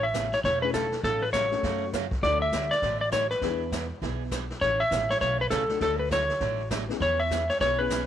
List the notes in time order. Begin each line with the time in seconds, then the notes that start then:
Already playing: A1
0.03 E5
0.14 C#3 E3 A3 C#4 G#4, kick, snare, hi-hat pedal
0.32 C#5, snare
0.44 E1 C#3 E3 A3 C#4 G#4 C#5, brush sweep, kick, snare
0.62 A3 C#4 E4 G#4 B4
0.74 C#3 E3 A3 C#4 G#4 A4, kick, snare, hi-hat pedal
0.92 snare
1.03 A1 C#3 F#3 A3 C#4 F#4 A4, brush sweep, kick, snare
1.22 B4
1.33 C#3 F#3 A3 C#4 F#4 C#5, kick, snare, hi-hat pedal
1.51 A3 C#4 F#4 A4, snare
1.63 F#2 C#3 F#3 A3 C#4 F#4, brush sweep, kick, snare
1.93 C#3 F#3 A3 C#4 F#4, kick, snare, hi-hat pedal
2.11 kick, snare
2.22 D2 D3 F#3 A3 D4 F#4 A4 D5, brush sweep, kick, snare
2.42 E5
2.52 D3 F#3 A3 D4 F#4, kick, snare, hi-hat pedal
2.71 D5, snare
2.82 A1 D3 F#3 A3 D4 F#4, brush sweep, kick, snare
3.01 D5
3.12 D3 F#3 A3 D4 F#4 C#5, kick, snare, hi-hat pedal
3.30 B4, snare
3.42 E2 E3 B3 D4 E4 G#4, brush sweep, kick, snare
3.72 E3 B3 D4 G#4, kick, snare, hi-hat pedal
4.02 B1 E3 B3 D4 G#4, brush sweep, kick, snare
4.31 E3 B3 D4 G#4, kick, snare, hi-hat pedal
4.50 snare
4.61 A1 C#3 E3 A3 C#4 G#4 C#5, brush sweep, kick, snare
4.80 E5
4.91 A1 C#3 E3 A3 C#4 G#4, kick, snare, hi-hat pedal
5.10 C#5, snare
5.21 B1 C#3 E3 A3 C#4 G#4 C#5, brush sweep, kick, snare
5.41 B4
5.50 C#2 C#3 E3 A3 C#4 G#4 A4, kick, snare, hi-hat pedal
5.69 A3 D4 F#4 A4, snare
5.81 D2 D3 F#3 A3 D4 F#4 A4, brush sweep, kick, snare
5.99 B4
6.11 D3 F#3 A3 D4 F#4 C#5, kick, snare, hi-hat pedal
6.29 snare
6.40 A1 D3 F#3 A3 D4 F#4, brush sweep, kick, snare
6.71 D3 F#3 A3 D4 F#4, kick, snare, hi-hat pedal
6.88 B3 C#4 E4 G#4, snare
7.00 E2 E3 B3 C#4 G#4 C#5, brush sweep, kick, snare
7.20 E5
7.30 E3 B3 C#4 G#4, kick, snare, hi-hat pedal
7.50 C#5, snare
7.60 B1 E3 B3 C#4 G#4 C#5, brush sweep, kick, snare
7.79 B3 C#4 E4 G#4 B4
7.90 E3 B3 C#4 G#4, kick, snare, hi-hat pedal